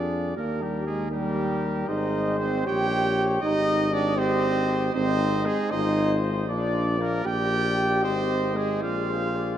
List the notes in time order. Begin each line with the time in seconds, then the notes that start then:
Already playing: F2 D4 F4 G#4 D5
0.36 D#2 A#3 G4 A#4
0.61 G3 G4
0.87 G#3 G#4
1.11 G3 G4 A#4
1.88 G#1 D#4 G#4 C5 D#5
2.40 C4 C5
2.66 A#1 G4 C#5 G5
3.42 G#1 D#4 G4 D#5
3.93 D4 D5
4.16 C4 G4 C5 D#5
4.94 G#1 C4 D#4 C5 D#5
5.46 G#3 G#4
5.71 G#1 D#4 F4 C5 D#5
6.47 A#1 D4 F4 D5
6.99 A#3 A#4
7.25 A#1 G4 D5 G5
8.02 G#1 C4 C5 D#5
8.56 G#3 G#4
8.82 A#1 F4 G#4 D5 F5
9.10 C5
9.36 D5